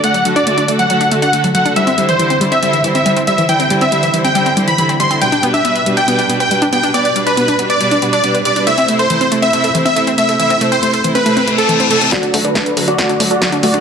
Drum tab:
HH |xxxxxxxxxxxxxxxx|xxxxxxxxxxxxxxxx|xxxxxxxxxxxxxxxx|xxxxxxxxxxxxxxxx|
SD |----------------|----------------|----------------|----------------|
BD |----------------|----------------|----------------|----------------|

HH |xxxxxxxxxxxxxxxx|xxxxxxxxxxxxxxxx|xxxxxxxxxxxxxxxx|xxoxxxoxxxoxxxox|
SD |----------------|----------------|----------------|o---o---o---o---|
BD |----------------|----------------|----------------|o---o---o---o---|